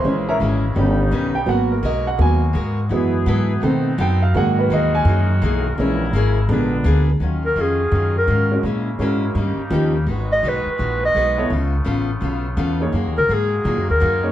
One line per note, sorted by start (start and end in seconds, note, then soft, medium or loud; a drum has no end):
0.00 0.28 A#2 soft
0.00 1.45 C#3 medium
0.00 0.72 E3 soft
0.00 0.75 G#3 medium
0.00 0.75 A#3 medium
0.00 0.75 E4 medium
0.00 0.25 C5 medium
0.00 0.25 C6 medium
0.04 0.39 A#1 medium
0.04 0.72 G#3 soft
0.04 0.29 G#3 soft
0.04 0.73 C#4 medium
0.04 0.30 C#4 medium
0.04 0.30 E4 soft
0.29 0.37 A#4 medium
0.29 0.36 C#5 medium
0.29 0.36 E5 medium
0.29 0.36 A#5 medium
0.40 0.75 G#1 medium
0.40 0.64 A#2 medium
0.40 0.65 G#3 medium
0.40 0.65 C#4 medium
0.40 0.66 E4 medium
0.75 1.11 G1 medium
0.75 1.00 D#3 soft
0.75 1.47 G3 medium
0.75 1.32 G3 soft
0.75 1.47 B3 medium
0.75 1.32 B3 soft
0.75 1.00 C#4 medium
0.75 1.32 C#4 soft
0.75 1.47 D#4 medium
0.75 1.01 G4 medium
0.75 1.01 B4 medium
1.11 1.46 B1 medium
1.11 1.36 D#3 medium
1.11 1.36 C#4 medium
1.11 1.37 G4 medium
1.11 1.37 B4 medium
1.35 1.47 G5 medium
1.46 1.82 G#1 medium
1.46 2.90 B2 medium
1.46 1.74 F#3 soft
1.46 1.72 G#3 soft
1.46 2.90 G#3 medium
1.46 1.74 A#3 soft
1.46 2.90 A#3 medium
1.46 1.74 B3 medium
1.46 1.72 B3 soft
1.46 2.90 F#4 medium
1.46 1.73 F#4 soft
1.46 1.70 F#5 medium
1.50 1.73 A#4 soft
1.72 1.84 A#4 medium
1.83 2.18 B1 medium
1.83 2.07 G#3 medium
1.83 2.08 B3 medium
1.83 2.08 F#4 medium
1.83 2.08 A#4 medium
1.83 2.06 D#5 medium
2.07 2.19 F#5 medium
2.18 2.54 D#2 loud
2.18 2.40 F#3 soft
2.18 2.43 G#3 soft
2.18 2.40 A#3 soft
2.18 2.43 B3 soft
2.18 2.40 B3 soft
2.18 2.44 F#4 medium
2.18 2.44 A#4 soft
2.18 3.24 G#5 medium
2.53 2.90 G#2 medium
2.53 2.78 G#3 medium
2.53 2.79 B3 medium
2.53 2.79 F#4 medium
2.53 2.80 A#4 medium
2.89 3.26 F#2 medium
2.89 3.59 E3 medium
2.89 3.62 E3 medium
2.89 3.14 F#3 medium
2.89 3.60 F#3 soft
2.89 3.59 G#3 soft
2.89 4.33 B3 medium
2.89 3.60 B3 medium
2.89 3.15 E4 medium
2.89 3.62 G#4 medium
2.89 3.16 A4 medium
2.89 3.16 B4 medium
3.26 3.61 G#2 medium
3.26 3.51 F#3 medium
3.26 3.51 E4 medium
3.26 3.52 A4 medium
3.26 3.52 B4 medium
3.61 3.97 B2 medium
3.61 3.89 D#3 medium
3.61 3.90 A3 soft
3.61 3.86 B3 medium
3.61 4.33 C4 medium
3.61 3.90 C4 medium
3.61 4.33 D#4 medium
3.61 3.87 D#4 medium
3.61 3.87 A4 medium
3.61 3.88 C5 medium
3.98 4.33 F#2 loud
3.98 4.22 B3 medium
3.98 4.23 D#4 medium
3.98 4.24 A4 medium
3.98 4.24 C5 medium
3.98 4.22 G5 medium
4.22 4.34 F5 medium
4.33 4.69 G#2 medium
4.33 5.76 D#3 medium
4.33 5.73 D#3 soft
4.33 4.58 E3 soft
4.33 5.74 F#3 soft
4.33 5.76 G#3 medium
4.33 5.74 G#3 soft
4.33 4.59 A#3 soft
4.33 5.74 A#3 medium
4.33 4.59 D#4 medium
4.33 5.75 F#4 medium
4.33 7.04 A#4 medium
4.37 4.60 G#4 medium
4.37 4.58 F#5 medium
4.59 4.71 B4 medium
4.70 5.04 D#2 medium
4.70 4.94 E3 medium
4.70 4.95 A#3 medium
4.70 4.95 D#4 medium
4.70 4.96 G#4 medium
4.70 4.94 D#5 medium
4.95 5.27 G#5 medium
5.05 5.40 F#2 loud
5.05 5.30 E3 medium
5.05 5.31 A#3 medium
5.05 5.32 D#4 medium
5.09 5.32 G#4 medium
5.42 5.77 B1 loud
5.42 5.66 E3 medium
5.42 5.66 A#3 medium
5.42 5.67 D#4 medium
5.42 5.67 G#4 medium
5.78 6.12 A#1 medium
5.78 6.49 C#3 medium
5.78 6.04 E3 soft
5.78 6.05 G#3 soft
5.78 7.04 G#3 medium
5.78 6.02 A#3 medium
5.78 6.05 C#4 medium
5.78 6.49 E4 medium
5.78 6.03 E4 medium
5.78 6.03 G#4 medium
5.78 6.03 C#5 medium
6.13 6.48 G#1 medium
6.13 6.38 A#3 medium
6.13 6.38 E4 medium
6.13 6.39 G#4 medium
6.13 6.39 C#5 medium
6.49 6.84 A#1 loud
6.49 7.04 B2 medium
6.49 7.05 D3 soft
6.49 7.05 G#3 soft
6.49 6.74 A#3 medium
6.49 7.05 B3 medium
6.49 7.04 D4 medium
6.49 6.74 D4 medium
6.49 6.75 G#4 medium
6.53 6.75 B4 medium
6.84 7.19 D2 loud
6.84 7.09 A#3 medium
6.84 7.10 D4 medium
6.84 7.10 G#4 medium
6.84 7.10 B4 medium
7.20 7.55 D#2 medium
7.20 7.44 D#3 medium
7.20 8.63 D#3 medium
7.20 7.45 F#3 medium
7.20 8.63 C#4 medium
7.20 7.46 C#4 medium
7.20 8.63 F4 medium
7.20 7.46 F4 soft
7.20 8.63 F#4 medium
7.46 7.63 A#4 medium
7.56 7.91 F2 medium
7.56 7.80 D#3 medium
7.56 7.81 F#3 medium
7.56 7.81 C#4 medium
7.56 7.82 F4 medium
7.61 8.17 G#4 medium
7.91 8.27 F#2 medium
7.91 8.16 D#3 soft
7.91 8.17 F#3 soft
7.91 8.17 C#4 soft
7.91 8.18 F4 medium
8.18 8.62 A#4 medium
8.27 8.63 G#2 medium
8.27 8.52 D#3 medium
8.27 8.52 F#3 medium
8.27 8.53 C#4 medium
8.27 8.53 F4 medium
8.51 8.62 G#3 medium
8.51 8.63 C#4 medium
8.51 8.63 F#4 medium
8.51 8.63 A#4 medium
8.62 8.98 A#2 medium
8.62 8.88 A#2 soft
8.62 10.05 C#3 medium
8.62 9.34 G#3 medium
8.62 8.88 G#3 medium
8.62 10.05 A#3 medium
8.62 8.89 C#4 medium
8.62 9.34 E4 medium
8.67 8.89 E4 medium
8.99 9.34 G#2 medium
8.99 9.24 A#2 medium
8.99 9.35 G#3 medium
8.99 9.24 G#3 medium
8.99 9.35 C#4 medium
8.99 9.25 C#4 medium
8.99 9.25 E4 medium
8.99 9.35 F#4 medium
8.99 9.36 A#4 medium
9.35 9.56 G2 medium
9.35 9.60 D#3 medium
9.35 10.07 G3 medium
9.35 9.60 A#3 medium
9.35 9.61 C#4 medium
9.35 10.06 D#4 medium
9.35 9.61 G4 medium
9.57 muted upright bass stroke soft
9.70 10.05 D#2 loud
9.70 9.95 D#3 medium
9.70 9.91 F3 medium
9.70 9.92 A#3 medium
9.70 9.96 A#3 medium
9.70 9.96 C#4 medium
9.70 9.92 D#4 medium
9.70 9.92 G4 medium
9.70 9.97 G4 medium
10.06 10.41 G#1 medium
10.06 11.49 D#3 medium
10.06 10.31 G#3 soft
10.06 11.49 G#3 medium
10.06 12.91 B3 medium
10.06 10.31 D#4 medium
10.06 11.49 F#4 medium
10.06 10.32 F#4 medium
10.06 10.32 B4 medium
10.33 10.50 D#5 loud
10.43 10.64 B1 medium
10.43 10.67 G#3 medium
10.43 10.68 D#4 medium
10.43 10.68 F#4 medium
10.43 10.68 B4 medium
10.48 11.04 B4 medium
10.66 muted upright bass stroke soft
10.78 11.14 A#1 medium
10.78 11.02 G#3 medium
10.78 11.03 D#4 soft
10.78 11.03 F#4 medium
10.78 11.04 B4 soft
11.05 11.49 D#5 loud
11.15 11.49 B1 medium
11.15 11.38 G#3 medium
11.15 11.39 D#4 medium
11.15 11.39 F#4 medium
11.15 11.40 B4 medium
11.37 11.49 B3 medium
11.37 11.49 E4 medium
11.37 11.49 A4 medium
11.37 11.50 C#5 medium
11.50 11.85 C#2 medium
11.50 11.74 C#3 soft
11.50 12.92 C#3 medium
11.50 12.92 A3 medium
11.50 11.75 B3 soft
11.50 12.92 F4 medium
11.50 11.75 F4 medium
11.50 11.75 A4 medium
11.84 12.21 A1 medium
11.84 12.09 C#3 medium
11.84 12.10 B3 medium
11.84 12.10 F4 medium
11.84 12.11 A4 medium
12.21 12.56 B1 medium
12.21 12.45 C#3 medium
12.21 12.46 B3 medium
12.21 12.47 F4 medium
12.21 12.47 A4 medium
12.57 12.92 E2 loud
12.57 12.81 C#3 medium
12.57 12.81 B3 medium
12.57 12.82 F4 medium
12.57 12.82 A4 medium
12.80 12.92 A#3 medium
12.80 12.92 D#4 medium
12.80 12.92 G#4 medium
12.80 12.93 C#5 medium
12.91 13.06 F#2 medium
12.91 14.32 D#3 medium
12.91 13.17 F#3 medium
12.91 14.32 G#3 medium
12.91 14.32 A#3 medium
12.91 13.18 A#3 medium
12.91 13.18 D#4 medium
12.91 14.32 F#4 medium
12.95 13.18 G#4 medium
13.06 13.17 D#2 medium
13.18 13.28 C#2 medium
13.18 13.35 A#4 medium
13.29 13.63 G#2 medium
13.29 13.53 F#3 medium
13.29 13.53 A#3 medium
13.29 13.54 D#4 medium
13.29 13.54 G#4 medium
13.34 13.90 G#4 medium
13.64 13.77 A#2 medium
13.64 13.88 F#3 soft
13.64 13.89 A#3 soft
13.64 13.90 D#4 medium
13.64 13.90 G#4 medium
13.77 13.89 F#2 medium
13.90 14.00 D#2 medium
13.90 14.32 A#4 medium
14.00 14.32 F#2 medium
14.00 14.24 F#3 medium
14.00 14.25 A#3 medium
14.00 14.25 D#4 medium
14.00 14.26 G#4 medium
14.23 14.32 A#3 medium
14.23 14.32 D#4 medium
14.23 14.32 G#4 medium
14.23 14.32 C#5 medium